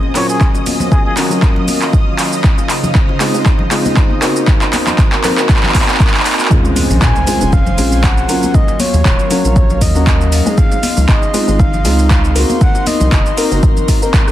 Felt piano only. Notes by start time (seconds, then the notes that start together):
Already playing: G#3 C4 C#4 F4
0.14 F#3 A#3 C#4 F4
1.17 F#3 A#3 C#4 F#4
1.30 F#3 A#3 C#4 F4
3.20 G#3 C4 D#4 F4
3.34 G#3 C4 D#4 F4
3.71 G#3 C4 D#4 F4
4.21 A#3 C4 D#4 F#4
5.23 A#3 C4 D#4 A#4
5.37 A#3 C4 D#4 F#4
6.50 G#3 C4 C#4 F4
7.27 G#3 C4 C#4 F4
7.41 G#3 C4 C#4 F4
7.78 G#3 C4 C#4 F4
8.28 F#3 A#3 C#4 F4
9.30 F#3 A#3 C#4 F#4
9.44 F#3 A#3 C#4 F4
9.95 F#3 A#3 C#4 F#4
10.46 G#3 C4 D#4 G#4
11.34 G#3 C4 D#4 F4
11.47 G#3 C4 D#4 F4
11.84 G#3 C4 D#4 F4
12.35 A#3 C4 D#4 F#4
13.37 A#3 C4 D#4 A#4
13.51 A#3 C4 D#4 F#4
14.02 A#3 C4 D#4 A#4